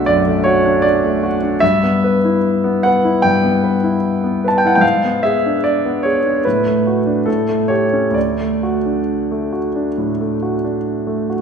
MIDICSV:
0, 0, Header, 1, 2, 480
1, 0, Start_track
1, 0, Key_signature, 2, "major"
1, 0, Tempo, 770218
1, 1007, Time_signature, 4, 2, 24, 8
1, 1007, Tempo, 802139
1, 3407, Tempo, 820793
1, 4367, Tempo, 902256
1, 5807, Tempo, 877193
1, 6594, End_track
2, 0, Start_track
2, 0, Title_t, "Grand piano"
2, 0, Program_c, 0, 0
2, 0, Control_c, 0, 64, 127
2, 0, Note_on_c, 0, 35, 49
2, 0, Note_on_c, 0, 57, 44
2, 0, Note_on_c, 0, 62, 38
2, 0, Note_on_c, 0, 66, 45
2, 0, Note_on_c, 0, 76, 75
2, 0, Note_on_c, 0, 78, 76
2, 39, Note_on_c, 0, 74, 73
2, 49, Note_on_c, 0, 42, 41
2, 119, Note_off_c, 0, 62, 0
2, 172, Note_off_c, 0, 57, 0
2, 172, Note_on_c, 0, 57, 42
2, 235, Note_off_c, 0, 42, 0
2, 272, Note_on_c, 0, 73, 71
2, 277, Note_off_c, 0, 74, 0
2, 286, Note_off_c, 0, 66, 0
2, 286, Note_on_c, 0, 66, 47
2, 356, Note_off_c, 0, 57, 0
2, 407, Note_on_c, 0, 62, 42
2, 473, Note_off_c, 0, 66, 0
2, 511, Note_on_c, 0, 74, 71
2, 515, Note_off_c, 0, 73, 0
2, 650, Note_on_c, 0, 57, 42
2, 768, Note_on_c, 0, 66, 46
2, 790, Note_off_c, 0, 62, 0
2, 839, Note_off_c, 0, 57, 0
2, 889, Note_on_c, 0, 62, 44
2, 961, Note_off_c, 0, 66, 0
2, 1000, Note_off_c, 0, 76, 0
2, 1000, Note_on_c, 0, 76, 74
2, 1003, Note_off_c, 0, 74, 0
2, 1010, Note_off_c, 0, 62, 0
2, 1012, Note_on_c, 0, 43, 50
2, 1016, Control_c, 0, 64, 0
2, 1018, Note_off_c, 0, 78, 0
2, 1020, Note_off_c, 0, 35, 0
2, 1116, Control_c, 0, 64, 127
2, 1137, Note_on_c, 0, 59, 40
2, 1262, Note_on_c, 0, 71, 46
2, 1328, Note_off_c, 0, 59, 0
2, 1383, Note_on_c, 0, 64, 41
2, 1453, Note_off_c, 0, 71, 0
2, 1621, Note_on_c, 0, 59, 43
2, 1735, Note_off_c, 0, 76, 0
2, 1735, Note_on_c, 0, 78, 73
2, 1750, Note_on_c, 0, 71, 41
2, 1768, Note_off_c, 0, 64, 0
2, 1811, Note_off_c, 0, 59, 0
2, 1863, Note_on_c, 0, 64, 39
2, 1933, Note_off_c, 0, 71, 0
2, 1952, Note_off_c, 0, 43, 0
2, 1968, Note_on_c, 0, 79, 78
2, 1972, Note_off_c, 0, 78, 0
2, 1979, Note_on_c, 0, 43, 42
2, 2047, Note_off_c, 0, 64, 0
2, 2096, Note_on_c, 0, 59, 39
2, 2217, Note_on_c, 0, 71, 44
2, 2282, Note_off_c, 0, 59, 0
2, 2336, Note_on_c, 0, 64, 38
2, 2404, Note_off_c, 0, 71, 0
2, 2576, Note_on_c, 0, 59, 38
2, 2699, Note_on_c, 0, 71, 40
2, 2707, Note_off_c, 0, 79, 0
2, 2716, Note_off_c, 0, 64, 0
2, 2721, Note_on_c, 0, 81, 65
2, 2763, Note_off_c, 0, 59, 0
2, 2769, Note_off_c, 0, 81, 0
2, 2780, Note_on_c, 0, 79, 65
2, 2822, Note_on_c, 0, 64, 41
2, 2826, Note_off_c, 0, 79, 0
2, 2833, Note_on_c, 0, 78, 62
2, 2880, Note_off_c, 0, 78, 0
2, 2885, Note_off_c, 0, 71, 0
2, 2885, Note_on_c, 0, 79, 64
2, 2898, Note_on_c, 0, 44, 45
2, 2906, Note_off_c, 0, 43, 0
2, 2920, Note_on_c, 0, 77, 68
2, 2933, Note_off_c, 0, 79, 0
2, 2935, Note_off_c, 0, 64, 0
2, 2937, Control_c, 0, 64, 0
2, 3030, Control_c, 0, 64, 127
2, 3060, Note_on_c, 0, 59, 36
2, 3164, Note_off_c, 0, 77, 0
2, 3169, Note_on_c, 0, 76, 67
2, 3180, Note_on_c, 0, 68, 38
2, 3246, Note_off_c, 0, 59, 0
2, 3307, Note_on_c, 0, 62, 37
2, 3366, Note_off_c, 0, 68, 0
2, 3409, Note_off_c, 0, 76, 0
2, 3413, Note_on_c, 0, 74, 61
2, 3541, Note_on_c, 0, 59, 35
2, 3643, Note_on_c, 0, 73, 60
2, 3649, Note_off_c, 0, 74, 0
2, 3657, Note_on_c, 0, 68, 36
2, 3680, Note_off_c, 0, 62, 0
2, 3726, Note_off_c, 0, 59, 0
2, 3778, Note_on_c, 0, 62, 33
2, 3845, Note_off_c, 0, 68, 0
2, 3849, Note_off_c, 0, 44, 0
2, 3885, Note_off_c, 0, 73, 0
2, 3886, Note_on_c, 0, 71, 57
2, 3893, Note_off_c, 0, 62, 0
2, 3898, Control_c, 0, 64, 0
2, 3900, Note_on_c, 0, 45, 44
2, 3986, Control_c, 0, 64, 127
2, 4013, Note_on_c, 0, 57, 34
2, 4134, Note_on_c, 0, 66, 38
2, 4201, Note_off_c, 0, 57, 0
2, 4248, Note_on_c, 0, 62, 34
2, 4323, Note_off_c, 0, 66, 0
2, 4360, Note_off_c, 0, 45, 0
2, 4360, Note_on_c, 0, 69, 53
2, 4368, Note_off_c, 0, 71, 0
2, 4369, Note_off_c, 0, 62, 0
2, 4372, Note_on_c, 0, 45, 41
2, 4378, Control_c, 0, 64, 0
2, 4464, Control_c, 0, 64, 127
2, 4485, Note_on_c, 0, 57, 32
2, 4586, Note_on_c, 0, 73, 55
2, 4593, Note_off_c, 0, 69, 0
2, 4598, Note_on_c, 0, 67, 36
2, 4669, Note_off_c, 0, 57, 0
2, 4720, Note_on_c, 0, 61, 32
2, 4789, Note_off_c, 0, 67, 0
2, 4813, Note_on_c, 0, 38, 38
2, 4825, Note_off_c, 0, 45, 0
2, 4832, Note_off_c, 0, 73, 0
2, 4833, Note_on_c, 0, 74, 51
2, 4839, Note_off_c, 0, 61, 0
2, 4847, Control_c, 0, 64, 0
2, 4944, Control_c, 0, 64, 127
2, 4970, Note_on_c, 0, 57, 28
2, 5092, Note_on_c, 0, 66, 36
2, 5164, Note_off_c, 0, 57, 0
2, 5212, Note_on_c, 0, 62, 31
2, 5285, Note_off_c, 0, 66, 0
2, 5456, Note_on_c, 0, 57, 32
2, 5568, Note_on_c, 0, 66, 33
2, 5594, Note_off_c, 0, 62, 0
2, 5643, Note_off_c, 0, 57, 0
2, 5691, Note_on_c, 0, 62, 30
2, 5759, Note_off_c, 0, 66, 0
2, 5774, Note_off_c, 0, 38, 0
2, 5810, Note_on_c, 0, 45, 31
2, 5883, Note_off_c, 0, 62, 0
2, 5935, Note_on_c, 0, 57, 30
2, 6004, Note_off_c, 0, 45, 0
2, 6053, Note_on_c, 0, 66, 33
2, 6124, Note_off_c, 0, 57, 0
2, 6173, Note_on_c, 0, 62, 32
2, 6241, Note_off_c, 0, 66, 0
2, 6406, Note_on_c, 0, 57, 29
2, 6524, Note_off_c, 0, 74, 0
2, 6531, Note_on_c, 0, 66, 30
2, 6552, Note_off_c, 0, 62, 0
2, 6594, Note_off_c, 0, 57, 0
2, 6594, Note_off_c, 0, 66, 0
2, 6594, End_track
0, 0, End_of_file